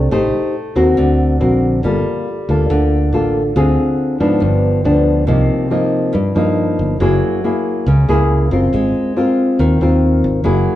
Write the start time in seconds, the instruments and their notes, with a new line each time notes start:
0.11 fingered electric bass A1, nylon-string guitar A3 D#4 G4 C5
0.76 fingered electric bass D#2, nylon-string guitar C4 F#4 A#4
0.97 fingered electric bass D2, nylon-string guitar D3
1.40 fingered electric bass A#1, nylon-string guitar C4 F#4 A#4
1.83 fingered electric bass G1, nylon-string guitar G3 A#3 F4 A4
2.49 fingered electric bass D2, nylon-string guitar A#3 F4 A4
2.70 fingered electric bass D2, nylon-string guitar D3
3.13 fingered electric bass A1, nylon-string guitar A#3 F4 A4
3.56 fingered electric bass D2, nylon-string guitar D3 C4 F4 G#4
4.20 fingered electric bass G#2, nylon-string guitar F3 B3 D4
4.40 fingered electric bass G1, nylon-string guitar G2
4.84 fingered electric bass D2, nylon-string guitar F3 B3 D4
5.27 fingered electric bass C2, nylon-string guitar C3 F3 A#3 D#4
5.71 nylon-string guitar F3 A#3 D#4
6.13 nylon-string guitar G2, fingered electric bass G2
6.35 fingered electric bass G2, nylon-string guitar F3 A#3 D#4
6.79 fingered electric bass G1
7.00 fingered electric bass F#1, nylon-string guitar F#3 A#3 E4 G#4
7.44 nylon-string guitar A#3 E4 G#4
7.86 fingered electric bass C#2, nylon-string guitar C#3
8.08 fingered electric bass C#2, nylon-string guitar A#3 E4 G#4
8.51 fingered electric bass F#1, nylon-string guitar C4 F4 A#4
8.73 fingered electric bass G#1, nylon-string guitar G#3
9.16 nylon-string guitar C4 F4 A#4
9.59 fingered electric bass D#2, nylon-string guitar D#3
9.81 fingered electric bass D#2, nylon-string guitar C4 F4 A#4
10.24 fingered electric bass G#1
10.44 fingered electric bass F#1, nylon-string guitar F#3 A#3 E4 G#4